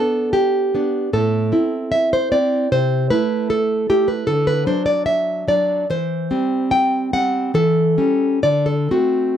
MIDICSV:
0, 0, Header, 1, 2, 480
1, 0, Start_track
1, 0, Tempo, 786370
1, 685, Time_signature, 2, 2, 24, 8
1, 2597, Tempo, 813008
1, 3557, Tempo, 829876
1, 4517, Tempo, 879765
1, 4997, Tempo, 1011804
1, 5448, End_track
2, 0, Start_track
2, 0, Title_t, "Nylon-string guitar"
2, 0, Program_c, 0, 24
2, 0, Note_on_c, 0, 59, 38
2, 0, Note_on_c, 0, 62, 44
2, 0, Note_on_c, 0, 69, 80
2, 195, Note_off_c, 0, 69, 0
2, 201, Note_on_c, 0, 67, 71
2, 447, Note_off_c, 0, 59, 0
2, 452, Note_off_c, 0, 62, 0
2, 455, Note_on_c, 0, 59, 42
2, 459, Note_on_c, 0, 62, 44
2, 667, Note_off_c, 0, 59, 0
2, 667, Note_off_c, 0, 67, 0
2, 669, Note_off_c, 0, 62, 0
2, 691, Note_on_c, 0, 45, 61
2, 693, Note_on_c, 0, 69, 73
2, 921, Note_off_c, 0, 45, 0
2, 928, Note_on_c, 0, 60, 43
2, 931, Note_on_c, 0, 64, 51
2, 1150, Note_off_c, 0, 69, 0
2, 1169, Note_on_c, 0, 76, 82
2, 1288, Note_off_c, 0, 76, 0
2, 1300, Note_on_c, 0, 72, 77
2, 1410, Note_off_c, 0, 60, 0
2, 1411, Note_off_c, 0, 64, 0
2, 1412, Note_off_c, 0, 72, 0
2, 1415, Note_on_c, 0, 74, 84
2, 1417, Note_on_c, 0, 60, 48
2, 1420, Note_on_c, 0, 64, 46
2, 1628, Note_off_c, 0, 60, 0
2, 1629, Note_off_c, 0, 64, 0
2, 1641, Note_off_c, 0, 74, 0
2, 1659, Note_on_c, 0, 48, 64
2, 1660, Note_on_c, 0, 72, 93
2, 1881, Note_off_c, 0, 72, 0
2, 1884, Note_off_c, 0, 48, 0
2, 1895, Note_on_c, 0, 71, 83
2, 1897, Note_on_c, 0, 57, 43
2, 1901, Note_on_c, 0, 64, 50
2, 2119, Note_off_c, 0, 71, 0
2, 2136, Note_on_c, 0, 69, 83
2, 2358, Note_off_c, 0, 69, 0
2, 2370, Note_off_c, 0, 57, 0
2, 2371, Note_off_c, 0, 64, 0
2, 2377, Note_on_c, 0, 57, 41
2, 2378, Note_on_c, 0, 64, 47
2, 2379, Note_on_c, 0, 67, 87
2, 2487, Note_off_c, 0, 67, 0
2, 2490, Note_on_c, 0, 71, 79
2, 2581, Note_off_c, 0, 57, 0
2, 2582, Note_off_c, 0, 64, 0
2, 2601, Note_off_c, 0, 71, 0
2, 2606, Note_on_c, 0, 69, 97
2, 2610, Note_on_c, 0, 50, 65
2, 2715, Note_off_c, 0, 69, 0
2, 2725, Note_on_c, 0, 71, 91
2, 2827, Note_off_c, 0, 50, 0
2, 2834, Note_off_c, 0, 71, 0
2, 2839, Note_on_c, 0, 54, 50
2, 2842, Note_on_c, 0, 62, 53
2, 2842, Note_on_c, 0, 72, 81
2, 2951, Note_off_c, 0, 72, 0
2, 2953, Note_on_c, 0, 74, 87
2, 3069, Note_off_c, 0, 74, 0
2, 3072, Note_on_c, 0, 76, 97
2, 3307, Note_off_c, 0, 76, 0
2, 3312, Note_off_c, 0, 54, 0
2, 3316, Note_off_c, 0, 62, 0
2, 3318, Note_on_c, 0, 54, 48
2, 3323, Note_on_c, 0, 62, 53
2, 3323, Note_on_c, 0, 74, 74
2, 3535, Note_off_c, 0, 54, 0
2, 3537, Note_off_c, 0, 62, 0
2, 3550, Note_off_c, 0, 74, 0
2, 3567, Note_on_c, 0, 52, 62
2, 3571, Note_on_c, 0, 72, 102
2, 3793, Note_off_c, 0, 52, 0
2, 3804, Note_on_c, 0, 60, 47
2, 3806, Note_on_c, 0, 55, 48
2, 4023, Note_off_c, 0, 72, 0
2, 4038, Note_on_c, 0, 79, 96
2, 4266, Note_off_c, 0, 79, 0
2, 4275, Note_off_c, 0, 55, 0
2, 4277, Note_off_c, 0, 60, 0
2, 4281, Note_on_c, 0, 55, 43
2, 4282, Note_on_c, 0, 78, 84
2, 4284, Note_on_c, 0, 60, 47
2, 4496, Note_off_c, 0, 55, 0
2, 4497, Note_off_c, 0, 60, 0
2, 4509, Note_off_c, 0, 78, 0
2, 4518, Note_on_c, 0, 52, 61
2, 4521, Note_on_c, 0, 69, 84
2, 4744, Note_off_c, 0, 52, 0
2, 4756, Note_on_c, 0, 61, 47
2, 4758, Note_on_c, 0, 55, 39
2, 4978, Note_off_c, 0, 55, 0
2, 4978, Note_off_c, 0, 61, 0
2, 4979, Note_off_c, 0, 69, 0
2, 5002, Note_on_c, 0, 74, 77
2, 5006, Note_on_c, 0, 50, 48
2, 5110, Note_on_c, 0, 69, 72
2, 5112, Note_off_c, 0, 74, 0
2, 5226, Note_off_c, 0, 50, 0
2, 5228, Note_off_c, 0, 69, 0
2, 5228, Note_on_c, 0, 57, 35
2, 5230, Note_on_c, 0, 60, 42
2, 5231, Note_on_c, 0, 66, 66
2, 5448, Note_off_c, 0, 57, 0
2, 5448, Note_off_c, 0, 60, 0
2, 5448, Note_off_c, 0, 66, 0
2, 5448, End_track
0, 0, End_of_file